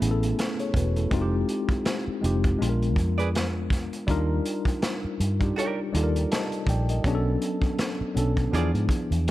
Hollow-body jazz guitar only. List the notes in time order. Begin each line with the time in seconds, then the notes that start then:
3.18 G#4 B4 D5
5.56 G4 A#4 D5
8.53 F4 G#4 D5